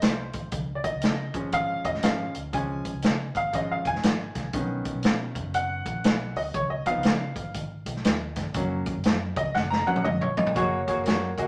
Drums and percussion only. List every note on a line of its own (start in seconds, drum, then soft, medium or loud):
0.02 snare loud
0.02 closed hi-hat loud
0.33 kick loud
0.33 closed hi-hat medium
0.52 kick loud
0.52 closed hi-hat medium
0.84 kick medium
0.84 closed hi-hat medium
1.02 snare medium
1.02 closed hi-hat medium
1.34 kick medium
1.34 closed hi-hat medium
1.52 kick medium
1.52 closed hi-hat loud
1.85 kick medium
1.85 closed hi-hat medium
1.94 snare soft
2.03 snare loud
2.03 closed hi-hat loud
2.35 closed hi-hat medium
2.53 kick loud
2.53 closed hi-hat medium
2.85 kick medium
2.85 closed hi-hat medium
3.02 snare loud
3.02 closed hi-hat medium
3.35 kick medium
3.35 closed hi-hat medium
3.53 kick medium
3.53 closed hi-hat medium
3.85 kick medium
3.85 closed hi-hat medium
3.95 snare soft
4.03 snare loud
4.03 closed hi-hat loud
4.35 kick loud
4.35 snare soft
4.35 closed hi-hat medium
4.53 kick loud
4.53 closed hi-hat medium
4.85 kick medium
4.85 closed hi-hat medium
5.03 snare loud
5.03 closed hi-hat medium
5.35 kick medium
5.35 closed hi-hat medium
5.54 closed hi-hat loud
5.86 kick medium
5.86 closed hi-hat medium
6.04 snare loud
6.04 closed hi-hat loud
6.36 open hi-hat medium
6.54 kick loud
6.54 closed hi-hat medium
6.86 kick medium
6.86 closed hi-hat medium
7.03 snare loud
7.03 closed hi-hat medium
7.36 kick loud
7.36 closed hi-hat medium
7.54 kick medium
7.54 closed hi-hat medium
7.86 kick medium
7.86 closed hi-hat medium
7.96 snare soft
8.04 snare loud
8.04 closed hi-hat loud
8.36 kick loud
8.36 snare soft
8.36 closed hi-hat medium
8.54 kick loud
8.54 closed hi-hat medium
8.86 kick medium
8.86 closed hi-hat medium
9.04 snare loud
9.04 closed hi-hat medium
9.36 kick loud
9.36 closed hi-hat medium
9.55 kick medium
9.55 snare medium
9.72 snare medium
9.87 high tom medium
9.96 high tom medium
10.05 mid tom medium
10.21 mid tom medium
10.37 floor tom loud
10.47 floor tom medium
10.56 kick loud
10.56 closed hi-hat medium
10.88 kick medium
10.88 closed hi-hat medium
11.06 snare loud
11.06 closed hi-hat medium
11.38 kick medium
11.38 closed hi-hat medium